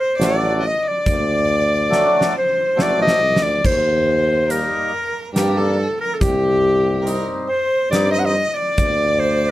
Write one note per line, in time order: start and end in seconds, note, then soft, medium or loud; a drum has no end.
0.00 0.17 C5 medium
0.00 0.25 C5 medium
0.17 0.71 A1 loud
0.17 0.63 F#3 medium
0.17 0.63 A3 medium
0.17 0.63 D4 medium
0.17 0.59 D5 medium
0.17 snare medium
0.17 closed hi-hat soft
0.24 0.68 D5 medium
0.61 0.84 D#5 medium
0.67 0.90 D#5 medium
0.83 2.26 D5 medium
0.88 2.36 D5 medium
1.06 2.09 D2 medium
1.06 kick medium
1.06 closed hi-hat soft
1.90 2.34 F#3 medium
1.90 2.34 A3 medium
1.90 2.34 D4 medium
1.90 snare soft
2.21 snare medium
2.27 2.35 D5 medium
2.33 2.78 C5 medium
2.38 2.83 C5 medium
2.76 2.96 F#1 medium
2.76 3.20 F#3 medium
2.76 3.20 A3 medium
2.76 3.20 C4 medium
2.76 3.66 D5 medium
2.76 snare medium
2.81 3.01 D5 medium
2.98 3.18 A1 medium
3.02 3.45 D#5 loud
3.07 snare medium
3.18 3.38 C2 medium
3.36 3.60 D2 medium
3.36 snare medium
3.43 3.67 D5 medium
3.64 4.67 D#2 medium
3.64 4.48 C5 medium
3.64 4.52 C5 loud
3.64 kick medium
3.64 crash medium
4.49 4.92 G3 medium
4.49 4.92 A#3 medium
4.49 4.92 D#4 medium
4.49 5.30 A#4 medium
4.49 5.19 A#4 medium
4.49 closed hi-hat soft
5.34 5.85 G2 medium
5.34 5.78 G3 medium
5.34 5.78 A#3 medium
5.34 5.78 D4 medium
5.34 5.59 G4 medium
5.34 snare medium
5.34 closed hi-hat soft
5.57 5.99 A4 medium
5.57 6.00 A4 medium
6.00 6.20 A#4 medium
6.00 6.16 A#4 medium
6.14 6.22 A4 medium
6.20 7.24 C2 medium
6.20 7.22 G4 loud
6.20 7.04 G4 medium
6.20 kick medium
6.20 closed hi-hat soft
7.02 7.48 G3 medium
7.02 7.48 C4 medium
7.02 7.48 D#4 medium
7.02 7.23 A#4 medium
7.07 closed hi-hat soft
7.49 7.88 C5 medium
7.49 7.94 C5 medium
7.91 8.42 G2 medium
7.91 8.35 G3 medium
7.91 8.35 C4 medium
7.91 8.35 D#4 medium
7.91 8.11 D5 medium
7.91 8.12 D5 medium
7.91 snare medium
7.91 closed hi-hat medium
8.12 8.20 D#5 medium
8.12 8.26 D#5 medium
8.19 8.27 F#5 medium
8.25 8.48 D#5 medium
8.25 8.58 D#5 medium
8.48 8.56 D#5 medium
8.54 9.21 D5 medium
8.54 9.51 D5 medium
8.77 9.51 D2 medium
8.77 kick medium
8.77 closed hi-hat soft
9.20 9.51 C5 medium